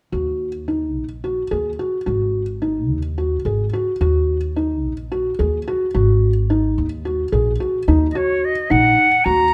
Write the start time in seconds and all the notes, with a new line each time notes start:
0.12 D#2 F#4
0.68 D#4
0.96 A#1
1.24 F#4
1.51 D#2 G#4
1.79 F#4
2.06 G#1 F#4
2.62 D#4
2.90 D#2
3.18 F#4
3.45 G#1 G#4
3.73 F#4
4.01 D#2 F#4
4.56 D#4
4.84 A#1
5.12 F#4
5.39 D#2 G#4
5.68 F#4
5.94 G#1 F#4
6.50 D#4
6.78 D#2
7.05 F#4
7.32 A#1 G#4
7.60 F#4
7.88 D#2 D#4
8.10 D#5
8.15 F#4 C#5
8.44 D#5
8.70 A#1 D#4 F#5
9.24 D#2 F#4 A#5